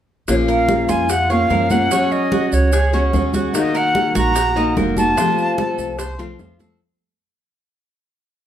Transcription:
0.28 upright bass A#1, steel-string acoustic guitar F3 A#3 C#4 F4, flute C#5, high bongo, high conga, maracas
0.48 cuban tres A#4, flute F5, high conga, maracas
0.69 high bongo, high conga, maracas
0.89 upright bass F2, cuban tres F4, flute G#5, high bongo, high conga, maracas
1.09 flute F#5, muted steel-string acoustic guitar stroke, high bongo, high conga, maracas
1.30 steel-string acoustic guitar A#3 C#4 F4, cuban tres C#5, flute F5, high bongo, high conga, maracas
1.50 upright bass F#2, steel-string acoustic guitar F3 A#3 C#4 F4, cuban tres A#4, high bongo, low bongo, high conga, maracas
1.70 steel-string acoustic guitar A#3 C#4 F4, flute F#5, high bongo, high conga, maracas
1.91 steel-string acoustic guitar F#3 G#3 C#4 F#4, cuban tres C#4, high bongo, high conga, maracas
2.11 flute D#5, high conga, maracas
2.32 cuban tres F#4, high bongo, high conga, maracas
2.52 upright bass C#2, flute C#5, high bongo, high conga, maracas
2.72 cuban tres G#4, muted steel-string acoustic guitar stroke, high bongo, high conga, maracas
2.93 steel-string acoustic guitar G#3 C#4 F#4, cuban tres C#4, high bongo, high conga, maracas
3.13 upright bass D#2, steel-string acoustic guitar F#3 G#3 C#4 F#4, high bongo, low bongo, high conga, maracas
3.33 steel-string acoustic guitar G#3 C#4 F#4, cuban tres F#4, high bongo, high conga, maracas
3.53 steel-string acoustic guitar D#3 A#3 D#4 F#4, flute D#5, high bongo, high conga, maracas
3.75 cuban tres A#4, flute F#5, high conga, maracas
3.95 high bongo, high conga, maracas
4.15 upright bass A#1, cuban tres F#4, flute A#5, high bongo, high conga, maracas
4.36 muted steel-string acoustic guitar stroke, high bongo, high conga, maracas
4.56 steel-string acoustic guitar A#3 D#4 F#4, cuban tres D#5, high bongo, high conga, maracas
4.76 upright bass F1, steel-string acoustic guitar D#3 A#3 D#4 F#4, cuban tres A#4, high bongo, low bongo, high conga, maracas
4.97 steel-string acoustic guitar A#3 D#4 F#4, flute A5, high bongo, high conga, maracas
5.17 steel-string acoustic guitar C3 F3 A3 C4 F4, cuban tres F4, high bongo, high conga, maracas
5.38 high conga, maracas
5.58 cuban tres A4, high bongo, high conga, maracas
5.78 upright bass C2, high bongo, high conga, maracas
5.98 cuban tres C5, muted steel-string acoustic guitar stroke, high bongo, high conga, maracas
6.18 steel-string acoustic guitar F3 A3 C4 F4, cuban tres F4, high bongo, high conga, maracas
6.39 steel-string acoustic guitar F3 A3 C4 F4, high bongo, low bongo, high conga, maracas
6.59 steel-string acoustic guitar F3 A3 C4 F4, cuban tres A4, high bongo, high conga, maracas

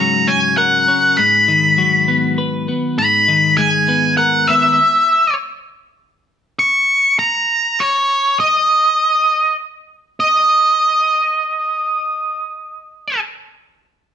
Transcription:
Already playing: clean electric guitar G#2 C#3 F#3, lead electric guitar A#5
0.28 clean electric guitar C#4, lead electric guitar G#5
0.57 clean electric guitar A#4, lead electric guitar F#5
0.88 clean electric guitar C#4
1.17 clean electric guitar G#2, lead electric guitar B5
1.48 clean electric guitar D#3
1.78 clean electric guitar F#3
2.08 clean electric guitar B3
2.38 clean electric guitar B4
2.68 clean electric guitar B3
2.98 clean electric guitar G#2, lead electric guitar B5
3.28 clean electric guitar D#3
3.57 clean electric guitar G#3, lead electric guitar G#5
3.89 clean electric guitar B3
4.17 clean electric guitar A#4, lead electric guitar F#5
4.47 clean electric guitar B3, lead electric guitar E5
6.59 lead electric guitar C#6
7.19 lead electric guitar A#5
7.80 lead electric guitar C#5
8.40 lead electric guitar D#5
10.20 lead electric guitar D#5

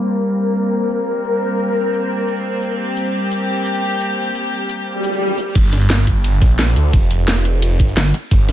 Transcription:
Already playing: string section G3 A#3
0.04 string section C4 A#4
0.21 shaker
0.30 shaker
0.55 shaker
0.90 shaker
0.99 shaker
1.24 shaker
1.59 shaker
1.67 shaker
1.93 shaker
2.28 shaker
2.36 shaker
2.62 shaker
2.79 string section G4
2.97 shaker
3.05 shaker
3.31 shaker
3.66 shaker
3.74 shaker
4.00 shaker
4.35 shaker
4.43 shaker
4.69 shaker
4.86 swell
5.04 shaker
5.12 shaker
5.38 shaker
5.55 detuned saw bass G1, kick, closed hi-hat, crash, ride
5.73 snare, closed hi-hat, ride, shaker
5.81 ride, shaker
5.90 snare, closed hi-hat, ride
5.99 snare
6.07 detuned saw bass G1, kick, closed hi-hat, ride, shaker
6.24 closed hi-hat, ride
6.42 detuned saw bass A#1, kick, snare, closed hi-hat, ride, shaker
6.50 shaker
6.59 snare, closed hi-hat, ride
6.76 detuned saw bass D2, closed hi-hat, ride, shaker
6.93 detuned saw bass F1, kick, closed hi-hat, ride
7.11 closed hi-hat, ride, shaker
7.19 shaker
7.28 snare, closed hi-hat, ride
7.37 ride
7.45 closed hi-hat, ride, shaker
7.62 closed hi-hat, ride
7.80 detuned saw bass G1, kick, closed hi-hat, ride, shaker
7.88 shaker
7.97 wobble bass G1, snare, closed hi-hat, ride
8.14 closed hi-hat, ride, shaker
8.31 detuned saw bass G1, kick, closed hi-hat, ride
8.49 snare, closed hi-hat, ride, shaker

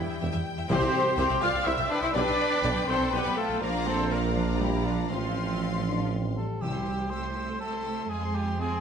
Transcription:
Already playing: cello section E3, french horn section G3 E4, trumpet section B3, viola section E4, flute section E5, violin section G5
0.08 double bass section E2, violin section E5
0.20 tuba E1, double bass section E2, violin section E5
0.32 double bass section E2, violin section E5
0.56 double bass section E2, violin section E5
0.68 double bass section C2, tuba C2, timpani C3, french horn section G3 E4, cello section C4, trumpet section G4, viola section C5, violin section E5, flute section C6
0.80 double bass section C2, violin section E5
1.17 double bass section C2, tuba C2, cello section C4, trumpet section G4, viola section C5, violin section E5, flute section C6
1.29 double bass section C2, violin section E5
1.41 double bass section C2, tuba C2, cello section F4, violin section C5, trumpet section D5, viola section F5, flute section F6
1.53 double bass section C2, violin section E5
1.66 double bass section C2, tuba C2, cello section E4, trumpet section C5, viola section E5, violin section E5, flute section E6
1.78 double bass section C2, violin section E5
1.90 cello section D4, trumpet section B4, viola section D5, flute section D6
2.01 double bass section C2, cello section E4, trumpet section C5, violin section E5, viola section E5, flute section E6
2.14 double bass section B1, tuba B1, french horn section G3 D4, cello section D4, trumpet section B4, violin section D5 G5, viola section D5, flute section D6
2.27 double bass section B1, violin section D5
2.63 double bass section B1, tuba B1, violin section D5
2.75 double bass section B1, violin section D5
2.87 double bass section B1, tuba B1, cello section C4, trumpet section A4, violin section B4, viola section C5, flute section C6
3.00 double bass section B1, violin section D5
3.11 double bass section B1, tuba B1, cello section B3, trumpet section G4, viola section B4, violin section D5, flute section B5
3.25 double bass section B1, violin section D5
3.35 cello section A3, trumpet section F4, viola section A4, flute section A5
3.49 double bass section B1, violin section D5
3.60 double bass section A#1, tuba A#1, french horn section F3 D4, cello section A#3, trumpet section F4, viola section A#4, violin section D5 F5 A#5, flute section A#5
3.84 cello section C4, trumpet section A4, viola section C5, flute section C6
4.08 cello section A#3, trumpet section F4, viola section A#4, violin section D5 F5 A#5, flute section A#5
4.35 cello section F3, trumpet section D4, viola section F4, flute section F5
4.59 cello section G3, trumpet section E4, viola section G4, flute section G5
4.84 cello section F3, trumpet section D4, viola section F4, flute section F5
5.09 tuba A1, double bass section A1, cello section F3, french horn section F3 C4, trumpet section C4, viola section F4, flute section F5, violin section F5 C6
5.62 french horn section C4
5.88 french horn section D4
6.12 french horn section C4
6.37 french horn section G3, cor anglais A4
6.61 double bass section C2, timpani C3, cello section G3, viola section C4, cor anglais G4, violin section G4 E6
6.74 viola section E4, violin section C5 C6
6.86 viola section C4, violin section G4 E6
6.99 viola section E4, violin section C5 C6
7.10 cello section A3, viola section C4, violin section G4 E6, cor anglais C5
7.23 viola section E4, violin section C5 C6
7.34 viola section C4, violin section G4 E6
7.47 viola section E4, violin section C5 C6
7.59 viola section C4, violin section G4 E6, cor anglais A4
7.72 viola section E4, violin section C5 C6
7.83 viola section C4, violin section G4 E6
7.97 viola section E4, violin section C5 C6
8.09 double bass section F2, viola section G#3, cello section G#3, violin section F4 G#5, cor anglais G#4
8.21 viola section C4, violin section G#4 C6
8.33 viola section G#3, violin section F4 G#5, cor anglais G4
8.45 viola section C4, violin section G#4 C6
8.57 viola section G#3, cello section C4, violin section F4 G#5, cor anglais G#4
8.69 viola section C4, violin section G#4 C6

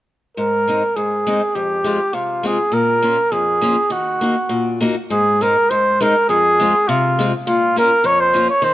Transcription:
0.37 steel-string acoustic guitar G#2, flugelhorn A#4
0.68 steel-string acoustic guitar G#3 C4 D#4
0.96 steel-string acoustic guitar G#2, flugelhorn G#4
1.27 steel-string acoustic guitar G#3 C4 D#4
1.55 steel-string acoustic guitar F2, flugelhorn G4
1.84 steel-string acoustic guitar G#3 C4 F4
2.13 steel-string acoustic guitar C3, flugelhorn F4
2.43 steel-string acoustic guitar G#3 C4 F4, flugelhorn G#4
2.72 steel-string acoustic guitar A#2, flugelhorn A#4
3.02 steel-string acoustic guitar A#3 C#4 F4
3.32 steel-string acoustic guitar F2, flugelhorn G#4
3.61 steel-string acoustic guitar A#3 C#4 F4
3.90 steel-string acoustic guitar D#3, flugelhorn F#4
4.21 steel-string acoustic guitar A#3 D#4 F#4
4.49 steel-string acoustic guitar A#2
4.81 steel-string acoustic guitar A#3 D#4 F#4
5.10 steel-string acoustic guitar G#2, flugelhorn G#4
5.41 steel-string acoustic guitar G#3 C4 D#4, flugelhorn A#4
5.70 steel-string acoustic guitar G#2, flugelhorn C5
6.01 steel-string acoustic guitar G#3 C4 D#4, flugelhorn A#4
6.29 steel-string acoustic guitar F2, flugelhorn G#4
6.60 steel-string acoustic guitar G#3 C4 F4
6.88 steel-string acoustic guitar C3, flugelhorn F4
7.19 steel-string acoustic guitar G#3 C4 F4
7.46 steel-string acoustic guitar A#2, flugelhorn F4
7.76 steel-string acoustic guitar A#3 C#4 F4, flugelhorn A#4
8.04 steel-string acoustic guitar F2, flugelhorn C#5
8.20 flugelhorn C5
8.34 steel-string acoustic guitar A#3 C#4 F4
8.49 flugelhorn C#5
8.62 steel-string acoustic guitar D#3, flugelhorn C5

